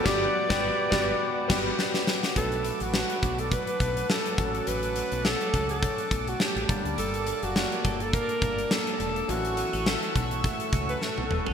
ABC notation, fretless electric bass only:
X:1
M:4/4
L:1/16
Q:"Swing 16ths" 1/4=104
K:Glyd
V:1 name="Fretless electric bass" clef=bass
G,,,2 z G,,,2 z G,,,2 z2 G,,,2 z4 | B,,,3 A,,,2 z B,,,3 z B,,,2 z2 A,,,2 | A,,,3 B,,,2 z C,,3 z B,,,2 z A,,, G,,, D,, | G,,,3 F,,,2 z G,,,3 z G,,,2 z2 E,,,2 |
A,,,3 A,,,2 z B,,,3 z C,,2 z B,,, E,,, F,,, |]